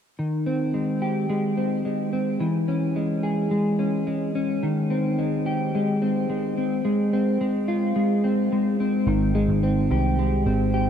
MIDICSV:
0, 0, Header, 1, 3, 480
1, 0, Start_track
1, 0, Key_signature, -4, "major"
1, 0, Tempo, 555556
1, 158, Time_signature, 4, 2, 24, 8
1, 9416, End_track
2, 0, Start_track
2, 0, Title_t, "Clean electric guitar"
2, 0, Program_c, 0, 27
2, 162, Note_on_c, 0, 51, 58
2, 401, Note_on_c, 0, 60, 53
2, 638, Note_on_c, 0, 56, 45
2, 880, Note_on_c, 0, 67, 50
2, 1114, Note_off_c, 0, 56, 0
2, 1118, Note_on_c, 0, 56, 52
2, 1348, Note_off_c, 0, 60, 0
2, 1358, Note_on_c, 0, 60, 42
2, 1596, Note_off_c, 0, 56, 0
2, 1599, Note_on_c, 0, 56, 47
2, 1828, Note_off_c, 0, 60, 0
2, 1838, Note_on_c, 0, 60, 48
2, 2073, Note_off_c, 0, 51, 0
2, 2077, Note_on_c, 0, 52, 60
2, 2126, Note_off_c, 0, 60, 0
2, 2127, Note_off_c, 0, 67, 0
2, 2317, Note_on_c, 0, 61, 51
2, 2554, Note_off_c, 0, 56, 0
2, 2557, Note_on_c, 0, 56, 47
2, 2793, Note_on_c, 0, 68, 53
2, 3029, Note_off_c, 0, 56, 0
2, 3033, Note_on_c, 0, 56, 54
2, 3264, Note_off_c, 0, 61, 0
2, 3275, Note_on_c, 0, 61, 50
2, 3513, Note_off_c, 0, 56, 0
2, 3517, Note_on_c, 0, 56, 47
2, 3749, Note_off_c, 0, 61, 0
2, 3760, Note_on_c, 0, 61, 46
2, 3996, Note_off_c, 0, 52, 0
2, 3999, Note_on_c, 0, 51, 64
2, 4047, Note_off_c, 0, 61, 0
2, 4236, Note_on_c, 0, 60, 54
2, 4477, Note_off_c, 0, 56, 0
2, 4481, Note_on_c, 0, 56, 49
2, 4715, Note_off_c, 0, 68, 0
2, 4719, Note_on_c, 0, 67, 51
2, 4963, Note_off_c, 0, 56, 0
2, 4967, Note_on_c, 0, 56, 56
2, 5197, Note_off_c, 0, 60, 0
2, 5201, Note_on_c, 0, 60, 46
2, 5437, Note_off_c, 0, 56, 0
2, 5440, Note_on_c, 0, 56, 51
2, 5678, Note_off_c, 0, 60, 0
2, 5681, Note_on_c, 0, 60, 50
2, 5913, Note_off_c, 0, 56, 0
2, 5916, Note_on_c, 0, 56, 68
2, 5919, Note_off_c, 0, 51, 0
2, 5966, Note_off_c, 0, 67, 0
2, 6159, Note_off_c, 0, 60, 0
2, 6163, Note_on_c, 0, 60, 54
2, 6397, Note_off_c, 0, 56, 0
2, 6400, Note_on_c, 0, 56, 51
2, 6636, Note_on_c, 0, 65, 56
2, 6872, Note_off_c, 0, 56, 0
2, 6875, Note_on_c, 0, 56, 59
2, 7115, Note_off_c, 0, 60, 0
2, 7119, Note_on_c, 0, 60, 52
2, 7360, Note_off_c, 0, 56, 0
2, 7364, Note_on_c, 0, 56, 51
2, 7601, Note_off_c, 0, 60, 0
2, 7604, Note_on_c, 0, 60, 46
2, 7839, Note_on_c, 0, 51, 68
2, 7885, Note_off_c, 0, 65, 0
2, 8074, Note_off_c, 0, 56, 0
2, 8078, Note_on_c, 0, 56, 60
2, 8317, Note_off_c, 0, 60, 0
2, 8321, Note_on_c, 0, 60, 54
2, 8564, Note_on_c, 0, 67, 51
2, 8799, Note_off_c, 0, 56, 0
2, 8802, Note_on_c, 0, 56, 55
2, 9031, Note_off_c, 0, 60, 0
2, 9042, Note_on_c, 0, 60, 55
2, 9268, Note_off_c, 0, 67, 0
2, 9278, Note_on_c, 0, 67, 58
2, 9416, Note_off_c, 0, 51, 0
2, 9416, Note_off_c, 0, 56, 0
2, 9416, Note_off_c, 0, 60, 0
2, 9416, Note_off_c, 0, 67, 0
2, 9416, End_track
3, 0, Start_track
3, 0, Title_t, "Picked electric bass"
3, 0, Program_c, 1, 34
3, 7836, Note_on_c, 1, 32, 94
3, 8179, Note_off_c, 1, 32, 0
3, 8197, Note_on_c, 1, 32, 85
3, 8540, Note_off_c, 1, 32, 0
3, 8559, Note_on_c, 1, 36, 81
3, 9014, Note_off_c, 1, 36, 0
3, 9038, Note_on_c, 1, 32, 80
3, 9416, Note_off_c, 1, 32, 0
3, 9416, End_track
0, 0, End_of_file